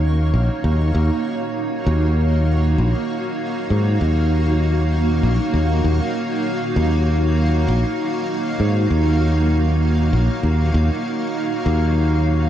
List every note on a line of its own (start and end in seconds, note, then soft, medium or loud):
0.00 0.31 D#2 medium
0.00 12.49 A#3 medium
0.00 12.49 D#4 medium
0.00 12.49 F#4 medium
0.00 12.49 C#5 medium
0.00 12.49 F5 medium
0.34 0.48 A#1 medium
0.64 0.91 D#2 medium
0.95 1.09 D#2 loud
1.86 2.76 D#2 loud
2.78 2.93 A#1 loud
3.70 3.97 G#2 medium
4.01 5.21 D#2 medium
5.23 5.38 A#1 medium
5.54 5.81 D#2 medium
5.84 5.99 D#2 loud
6.76 7.65 D#2 loud
7.68 7.83 A#1 loud
8.60 8.87 G#2 medium
8.90 10.10 D#2 medium
10.13 10.28 A#1 medium
10.43 10.71 D#2 medium
10.74 10.89 D#2 loud
11.66 12.49 D#2 loud